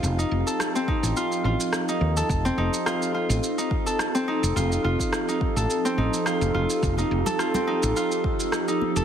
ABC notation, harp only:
X:1
M:4/4
L:1/16
Q:"Swing 16ths" 1/4=106
K:Fmix
V:1 name="Harp"
z E2 A z C E2 F z F z2 E2 A | z C E2 F z F z2 E2 A z C E2 | F z F z2 E2 A z C E2 F z F z | z E2 A F C E2 F z4 E2 A |]